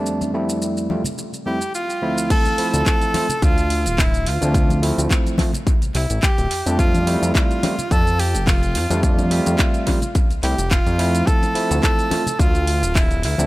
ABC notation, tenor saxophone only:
X:1
M:4/4
L:1/8
Q:"Swing 16ths" 1/4=107
K:Dm
V:1 name="Tenor saxophone"
z4 z G F2 | A2 A2 F2 E F- | F z4 E G2 | F2 F2 A G F2 |
F4 z G F2 | A2 A2 F2 E E |]